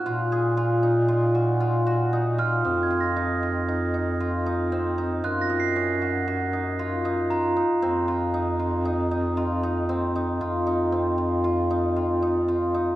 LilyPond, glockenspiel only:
\new Staff \with { instrumentName = "Glockenspiel" } { \time 5/4 \key f \phrygian \tempo 4 = 116 ges'''8 r1 f'''8 | ees'''16 aes'''16 bes'''2~ bes'''8. r4. r16 | ges'''16 bes'''16 c''''2~ c''''8. r8. bes''4~ | bes''8 r1 r8 |
r1 r4 | }